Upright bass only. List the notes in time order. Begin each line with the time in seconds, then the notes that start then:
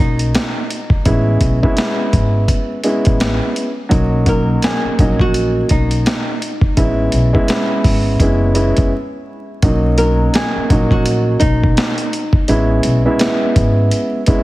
0.00 B1
1.06 A1
1.41 B1
2.13 G#1
3.07 A1
3.92 B1
4.85 muted upright bass stroke
4.99 A#1
5.71 B1
6.77 A1
7.13 B1
7.85 G#1
8.20 F#1
8.78 F#1
9.63 B1
10.56 muted upright bass stroke
10.70 A#1
11.42 B1
12.49 A1
12.85 B1
13.56 G#1